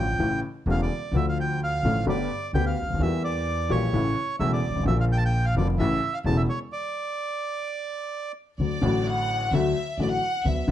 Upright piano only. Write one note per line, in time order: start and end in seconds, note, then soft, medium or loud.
0.00 0.16 A1 medium
0.00 0.16 A2 medium
0.00 0.16 D3 medium
0.00 0.16 F3 medium
0.00 0.16 A3 soft
0.00 0.16 F4 medium
0.19 0.39 A1 medium
0.19 0.39 A2 medium
0.19 0.39 C#3 medium
0.19 0.39 E3 medium
0.19 0.39 A3 medium
0.19 0.39 E4 medium
0.67 0.87 E1 medium
0.67 0.87 E2 medium
0.67 0.87 C#3 medium
0.67 0.87 E3 medium
0.67 0.87 A3 medium
0.67 0.87 E4 medium
1.14 1.81 D2 medium
1.14 1.81 D3 medium
1.14 1.80 F3 medium
1.14 1.81 A3 medium
1.14 1.82 F4 medium
1.85 2.04 A1 medium
1.85 2.04 A2 medium
1.85 2.04 D3 medium
1.85 2.04 F3 medium
1.85 2.04 A3 medium
1.85 2.04 F4 medium
2.06 2.27 G1 medium
2.06 2.27 G2 medium
2.06 2.26 D3 medium
2.06 2.26 A3 medium
2.06 2.27 B3 medium
2.06 2.27 G4 medium
2.55 2.74 D2 medium
2.55 2.74 D3 medium
2.55 2.74 A3 medium
2.55 2.74 B3 medium
2.55 2.74 G4 medium
2.82 2.88 C#2 soft
2.89 2.95 D2 soft
2.95 3.00 D#2 medium
2.99 3.67 E2 medium
2.99 3.00 E3 medium
2.99 3.67 E3 medium
2.99 3.66 G3 medium
2.99 3.67 A#3 medium
2.99 3.68 G4 medium
3.70 3.90 A#1 medium
3.70 3.90 A#2 medium
3.70 3.89 E3 medium
3.70 3.90 G3 medium
3.70 3.90 A#3 medium
3.70 3.90 G4 medium
3.93 4.13 A1 medium
3.93 4.13 A2 medium
3.93 4.13 C#3 medium
3.93 4.13 E3 medium
3.93 4.13 A3 medium
3.93 4.13 E4 medium
4.40 4.59 E1 medium
4.40 4.59 E2 medium
4.40 4.59 C#3 medium
4.40 4.59 E3 medium
4.40 4.59 A3 medium
4.40 4.60 E4 medium
4.69 4.75 G1 soft
4.76 4.81 G#1 medium
4.83 4.87 A1 medium
4.83 5.51 D3 medium
4.83 5.52 F3 medium
4.87 5.52 A#1 medium
4.87 5.52 A#2 medium
4.87 5.53 A#3 medium
4.87 5.53 F4 medium
5.56 5.76 F1 medium
5.56 5.75 F2 medium
5.56 5.75 D3 medium
5.56 5.75 F3 medium
5.56 5.76 A#3 medium
5.56 5.76 F4 medium
5.80 5.99 A1 medium
5.80 5.99 A2 medium
5.80 5.99 C#3 medium
5.80 5.99 E3 medium
5.80 5.99 A3 medium
5.80 5.99 E4 medium
6.25 6.45 E1 medium
6.25 6.45 E2 medium
6.25 6.45 C#3 medium
6.25 6.45 E3 medium
6.25 6.45 A3 medium
6.25 6.45 E4 medium
8.60 8.79 D2 soft
8.60 8.79 D3 soft
8.60 8.79 F#3 soft
8.60 8.79 A3 soft
8.60 8.79 F#4 soft
8.81 9.49 A1 medium
8.81 9.49 A2 medium
8.81 9.48 D3 medium
8.81 9.49 F#3 medium
8.81 9.50 A3 medium
8.81 9.50 F#4 medium
9.53 9.72 D2 medium
9.53 9.72 D3 medium
9.53 9.72 F#3 medium
9.53 9.73 A3 medium
9.53 9.72 F#4 medium
9.99 10.19 A1 medium
9.99 10.19 A2 medium
9.99 10.19 D3 medium
9.99 10.19 F#3 soft
9.99 10.19 A3 soft
9.99 10.19 F#4 medium
10.45 10.65 D2 medium
10.45 10.65 D3 soft
10.45 10.65 F#3 soft
10.45 10.65 B3 soft
10.45 10.65 F#4 soft
10.68 10.71 D3 medium